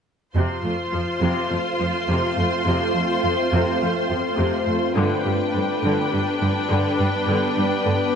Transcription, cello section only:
0.35 0.43 F2 medium
0.64 0.72 F2 soft
0.93 1.01 F2 soft
1.21 1.29 F2 soft
1.51 1.59 F2 soft
1.80 1.88 F2 soft
2.08 2.16 F2 soft
2.37 2.45 F2 soft
2.65 2.73 F2 soft
2.95 3.03 F2 soft
3.23 3.31 F2 soft
3.53 3.61 F2 medium
3.82 3.90 F2 soft
4.10 4.18 F2 soft
4.39 4.47 F2 medium
4.68 4.76 F2 soft
4.97 5.05 G2 medium
5.26 5.34 G2 soft
5.55 5.63 G2 soft
5.84 5.92 G2 soft
6.13 6.21 G2 soft
6.42 6.50 G2 soft
6.70 6.78 G2 medium
7.00 7.08 G2 soft
7.28 7.36 G2 medium
7.57 7.65 G2 soft
7.86 7.94 G2 soft

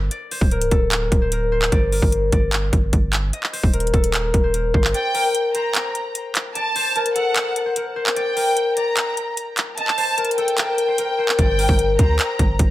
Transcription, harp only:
0.00 0.51 A#4 medium
0.00 0.31 C5 medium
0.00 0.11 D5 loud
0.11 1.72 D5 medium
0.31 1.21 C5 medium
0.52 0.78 A#4 medium
0.72 0.98 A4 medium
0.92 1.32 A#4 medium
1.22 1.51 C5 medium
1.32 1.92 A#4 medium
1.52 3.50 C5 loud
1.72 2.32 D5 loud
1.92 3.73 A#4 medium
2.33 3.39 D5 medium
3.33 5.00 D#5 medium
3.53 4.43 C5 medium
3.73 4.00 A#4 medium
3.94 4.20 A4 medium
4.14 4.54 A#4 medium
4.44 4.74 C5 medium
4.54 5.14 A#4 medium
4.74 5.55 C5 medium
4.94 6.55 D5 loud
5.15 6.95 A#4 medium
5.55 6.75 C5 medium
6.55 8.16 D5 medium
6.76 7.65 C5 medium
6.96 7.22 A#4 medium
7.16 7.42 A4 medium
7.36 7.76 A#4 medium
7.66 7.96 C5 medium
7.77 8.36 A#4 medium
7.96 9.94 C5 loud
8.16 8.77 D5 loud
8.36 10.17 A#4 medium
8.77 9.84 D5 medium
9.78 11.45 D#5 medium
9.97 10.88 C5 medium
10.18 10.44 A#4 medium
10.38 10.64 A4 medium
10.58 10.98 A#4 medium
10.88 11.18 C5 medium
10.98 11.58 A#4 medium
11.19 11.99 C5 medium
11.39 12.71 D5 loud
11.59 12.71 A#4 loud
11.99 12.71 C5 medium

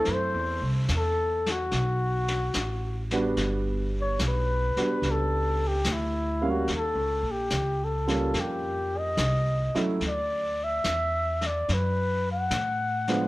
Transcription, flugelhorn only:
0.00 0.15 A4 medium
0.13 0.76 C5 medium
0.97 1.53 A4 medium
1.52 3.14 F#4 medium
4.01 4.22 C#5 medium
4.28 5.12 B4 medium
5.11 5.69 A4 medium
5.67 5.94 G4 medium
5.92 6.51 E4 medium
6.50 6.71 F#4 medium
6.77 7.33 A4 medium
7.31 7.86 G4 medium
7.84 8.41 A4 medium
8.40 9.00 G4 medium
8.98 9.87 D#5 medium
10.07 10.65 D5 medium
10.64 11.48 E5 medium
11.47 11.75 D5 medium
11.73 12.28 B4 medium
12.32 13.28 F#5 medium

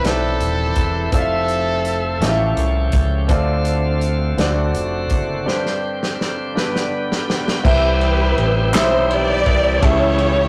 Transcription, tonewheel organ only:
0.00 1.11 E3 medium
0.00 2.18 C4 soft
0.00 1.10 G4 medium
0.00 1.10 B4 medium
1.13 2.20 F3 medium
1.13 2.21 A4 medium
1.13 2.20 E5 soft
2.22 3.29 F3 medium
2.22 4.37 A3 medium
2.22 3.29 C#4 medium
2.22 3.29 G4 medium
3.31 7.61 D3 medium
3.31 6.53 C4 medium
3.31 4.38 F4 medium
4.39 5.46 A3 medium
4.39 5.46 F#4 medium
5.48 7.63 G3 medium
5.48 6.54 G4 medium
6.55 7.63 B3 soft
6.55 7.63 G4 medium
7.64 10.48 E3 medium
7.64 9.80 G3 medium
7.64 9.80 C4 medium
7.64 10.48 G4 medium
9.82 10.48 A3 medium
9.82 10.48 C#4 medium

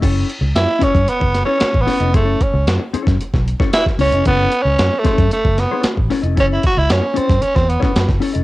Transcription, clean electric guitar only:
0.01 0.26 C#4 medium
0.01 0.27 E4 medium
0.01 0.27 A4 medium
0.01 0.27 C#5 loud
0.41 muted clean electric guitar stroke soft
0.67 muted clean electric guitar stroke soft
0.79 0.98 C#4 medium
0.79 0.94 E4 medium
0.79 0.93 A4 medium
0.79 0.93 C#5 medium
0.94 muted clean electric guitar stroke soft
1.06 muted clean electric guitar stroke soft
1.20 muted clean electric guitar stroke medium
1.46 1.58 C#4 medium
1.46 1.59 E4 medium
1.46 1.59 A4 medium
1.46 1.60 C#5 medium
1.59 muted clean electric guitar stroke soft
1.73 muted clean electric guitar stroke medium
1.86 2.00 C#4 medium
1.86 2.00 E4 medium
1.86 1.99 A4 medium
1.86 1.99 C#5 medium
2.00 2.12 C#4 medium
2.00 2.12 E4 medium
2.00 2.13 A4 medium
2.00 2.14 D#5 medium
2.13 2.24 C4 medium
2.13 2.38 E4 medium
2.13 2.38 A4 medium
2.13 2.39 C#5 loud
2.24 2.38 C#4 medium
2.54 muted clean electric guitar stroke soft
2.79 muted clean electric guitar stroke medium
2.93 3.13 C#4 medium
2.93 3.08 E4 medium
2.93 3.07 A4 medium
2.93 3.07 C#5 loud
3.08 muted clean electric guitar stroke soft
3.21 muted clean electric guitar stroke soft
3.34 muted clean electric guitar stroke soft
3.60 3.72 C#4 medium
3.60 3.72 E4 medium
3.60 3.73 A4 medium
3.60 3.73 C#5 medium
3.73 muted clean electric guitar stroke soft
3.86 muted clean electric guitar stroke medium
3.99 4.12 C#4 medium
3.99 4.13 E4 medium
3.99 4.12 A4 medium
3.99 4.13 C#5 medium
4.14 4.25 C#4 medium
4.14 4.26 E4 medium
4.14 4.26 A4 medium
4.26 4.50 C#4 medium
4.26 4.51 E4 medium
4.26 4.51 A4 loud
4.26 4.51 C#5 medium
4.66 muted clean electric guitar stroke soft
4.93 muted clean electric guitar stroke medium
5.04 5.25 C#4 medium
5.04 5.19 E4 medium
5.04 5.18 A4 medium
5.04 5.18 C#5 loud
5.19 muted clean electric guitar stroke medium
5.33 muted clean electric guitar stroke soft
5.44 muted clean electric guitar stroke soft
5.71 5.84 C#4 medium
5.71 5.84 E4 medium
5.71 5.85 A4 medium
5.71 5.84 C#5 medium
5.85 muted clean electric guitar stroke soft
5.97 muted clean electric guitar stroke soft
6.10 6.24 C#4 medium
6.10 6.23 E4 medium
6.10 6.22 A4 medium
6.10 6.22 C#5 medium
6.22 6.34 C#4 medium
6.22 6.35 E4 medium
6.22 6.35 A4 medium
6.22 6.36 D#5 medium
6.35 6.60 C#4 medium
6.35 6.61 E4 loud
6.35 6.61 A4 medium
6.35 6.61 C#5 medium
6.75 muted clean electric guitar stroke soft
7.02 muted clean electric guitar stroke soft
7.14 7.32 C#4 medium
7.14 7.29 E4 medium
7.14 7.28 A4 medium
7.14 7.27 C#5 medium
7.28 muted clean electric guitar stroke soft
7.41 muted clean electric guitar stroke medium
7.54 muted clean electric guitar stroke soft
7.80 7.93 C#4 medium
7.80 7.93 E4 medium
7.80 7.93 A4 medium
7.80 7.94 C#5 medium
7.94 muted clean electric guitar stroke soft
8.08 muted clean electric guitar stroke medium
8.20 8.34 C#4 medium
8.20 8.33 E4 medium
8.20 8.33 A4 medium
8.20 8.33 C#5 medium
8.33 8.44 C#4 medium
8.33 8.44 E4 medium
8.33 8.44 A4 medium
8.33 8.44 D#5 medium

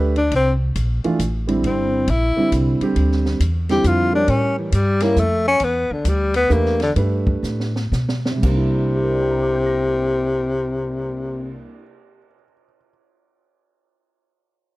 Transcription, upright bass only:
0.00 0.30 D2 medium
0.31 0.74 C2 medium
0.76 1.02 A#1 medium
1.05 muted upright bass stroke soft
1.19 1.62 A1 medium
1.63 2.06 G1 medium
2.08 2.35 A#1 medium
2.37 muted upright bass stroke soft
2.52 2.79 C2 medium
2.80 muted upright bass stroke soft
2.96 3.39 D2 medium
3.40 3.83 E2 medium
3.84 4.27 F2 medium
4.28 4.71 A2 medium
4.72 5.15 G2 medium
5.16 5.59 F2 medium
5.60 5.87 E2 medium
5.90 muted upright bass stroke soft
6.05 6.48 D2 medium
6.50 6.95 E2 medium
6.96 7.42 G2 medium
7.43 7.90 A2 medium
7.92 8.41 B2 medium
8.43 11.65 C2 medium

